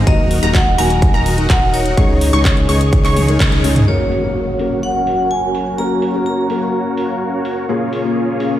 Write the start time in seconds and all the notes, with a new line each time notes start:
0.06 D#1 F#3 A#3 D#4 F#4 A#4 D#5 A#5, kick, closed hi-hat
0.31 open hi-hat
0.42 D#1 F#3 A#3 D#4 F#4 A#4 A#5, closed hi-hat
0.55 F#5, kick, clap, closed hi-hat
0.77 D#1 F#3 A#3 D#4 F#4 A#4 G#5 A#5, open hi-hat
0.90 closed hi-hat
1.02 kick, closed hi-hat
1.14 D#1 D#4 F#4 A#4 A#5
1.26 open hi-hat
1.38 closed hi-hat
1.50 D#1 D#4 F#4 A#4 F#5 A#5, kick, clap, closed hi-hat
1.74 C#5, open hi-hat
1.86 closed hi-hat
1.97 C#2 G#3 C#4 D#4 G#4 C#5 C#6, kick, closed hi-hat
2.21 open hi-hat
2.33 C#2 G#3 C#4 D#4 G#4 C#5 C#6, closed hi-hat
2.45 kick, clap, closed hi-hat
2.57 closed hi-hat
2.68 C#2 G#3 C#4 D#4 G#4 C#5 C#6, open hi-hat
2.81 closed hi-hat
2.93 kick, closed hi-hat
3.05 C#2 D#4 G#4 C#5 C#6, clap, open hi-hat
3.17 open hi-hat, high tom
3.28 G#3 C#4 D#4 A#4, closed hi-hat
3.40 C#2 D#4 G#4 C#5 C#6, kick, clap, closed hi-hat, mid tom
3.52 closed hi-hat, mid tom
3.64 G#3 C#4 D#4 G#4, open hi-hat
3.76 closed hi-hat, mid tom
3.87 F#3 A#3 C#4 F#4 A#4 C#5 F#5, impact
4.12 open hi-hat
4.23 A#3 C#4 F#4 A#4
4.58 A#3 C#4 F#4 A#4, open hi-hat
4.83 F#5
5.07 open hi-hat
5.31 G#5
5.55 open hi-hat
5.78 A#3 C#4 F#4 A#4 F5 A#5
6.02 open hi-hat
6.14 A#3 C#4 F#4 A#4
6.26 A#5
6.49 A#3 C#4 F#4 A#4, open hi-hat
6.97 open hi-hat
7.45 open hi-hat
7.68 C#3 A#3 C#4 F4 G#4 C#5
7.93 open hi-hat
8.04 A#3 C#4 F4 G#4
8.39 A#3 C#4 F4 G#4, open hi-hat